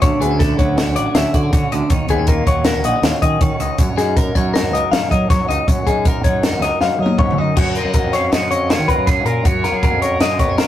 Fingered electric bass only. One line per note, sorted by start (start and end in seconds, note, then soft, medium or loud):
0.02 0.10 D2 medium
0.20 0.53 D2 medium
0.59 0.83 D2 medium
0.87 0.97 D2 medium
0.97 1.04 A1 medium
1.15 1.23 D2 loud
1.34 1.50 D3 medium
1.53 1.61 D3 medium
1.73 1.80 D2 medium
1.91 1.99 D#2 medium
2.10 2.42 D#2 medium
2.47 2.71 D#2 medium
2.75 2.84 D#2 medium
2.84 2.92 A#1 medium
3.02 3.11 D#2 medium
3.23 3.39 D#3 medium
3.41 3.49 D#3 medium
3.59 3.68 C#2 medium
3.79 3.87 F#2 medium
3.97 4.30 F#2 medium
4.35 4.60 F#2 medium
4.63 4.72 F#2 medium
4.72 4.81 C#2 medium
4.91 5.00 F#2 loud
5.11 5.27 F#3 medium
5.30 5.38 F#3 medium
5.49 5.57 C#2 medium
5.68 5.76 F#2 medium
5.87 6.19 F#2 medium
6.25 6.49 F#2 medium
6.52 6.61 F#2 medium
6.61 6.70 C#2 medium
6.81 6.89 F#2 loud
6.99 7.16 F#3 medium
7.18 7.35 G#2 medium
7.38 7.55 F#2 medium
7.57 7.81 F#2 medium
7.85 8.01 F#2 medium
8.03 8.28 F2 medium
8.33 8.51 F#2 medium
8.51 8.75 F2 medium
8.79 8.87 D#3 medium
8.97 9.25 F#2 medium
9.25 9.42 A#2 medium
9.45 9.70 F#2 medium
9.72 9.89 F#2 medium
9.93 10.17 F2 medium
10.20 10.39 F#2 medium
10.39 10.64 F2 medium